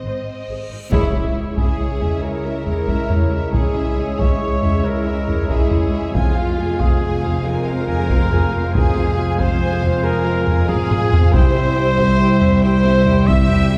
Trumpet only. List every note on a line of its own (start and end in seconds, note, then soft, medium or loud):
0.92 1.53 E4 medium
1.57 2.21 G#4 medium
2.22 3.54 A#4 medium
3.53 4.21 G#4 medium
4.19 4.86 C#5 medium
4.85 5.51 A#4 medium
5.49 6.14 G#4 medium
6.15 6.82 F4 medium
6.80 7.23 G#4 medium
7.45 8.71 A#4 medium
8.75 9.41 G#4 medium
9.39 10.06 C5 loud
10.04 10.68 A#4 loud
10.68 11.34 G#4 loud
11.33 12.62 C5 loud
12.63 13.28 C5 loud
13.27 13.69 E5 loud